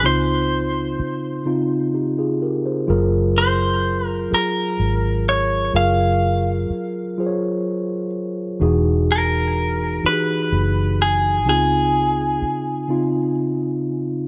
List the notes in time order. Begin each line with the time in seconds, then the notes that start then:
0.03 C#2 C#3 C4 D#4 F4 C5
1.00 muted fingered electric bass stroke
1.45 C#3 C4 D#4 F4
1.94 D#4 G4
2.19 F4 G#4
2.42 G4 A#4
2.66 G#4 C5
2.87 F#1 F#3 F4 G#4 A#4
3.38 C5
4.07 A#4
4.30 F#3 F4 G#4 A#4, muted fingered electric bass stroke
4.80 G#1
5.29 C#5
5.73 F#1 F#3 F4 G#4 A#4 F5
6.70 muted fingered electric bass stroke
7.18 F#3 F4 G#4 C5
7.26 C#5
8.60 E1 E3 D#4 F#4 G#4
9.12 A#4
10.03 E3 D#4 F#4 G4 B4, muted fingered electric bass stroke
10.12 G#4
10.52 F#1
11.02 G#4
11.46 C#2 C#3 C4 D#4 F4 G#4
12.42 muted fingered electric bass stroke
12.88 C#3 C4 D#4 F4